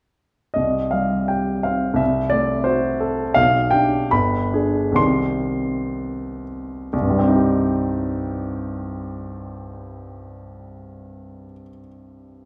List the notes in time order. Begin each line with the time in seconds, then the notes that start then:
0.54 C2 D#5
0.91 G3 F5
1.28 G4 G5
1.63 C4 F5
1.94 C2 E5
2.30 A3 D5
2.64 F#4 C5
3.00 A4
3.34 B1 F5
3.71 D4 G4 G5
4.11 G1 B5
4.53 D4 G#4
4.92 C2 D#3 C4 C6
4.96 G4
6.93 C2
7.02 G2
7.10 G3
7.19 C4
7.28 D#4
7.36 G4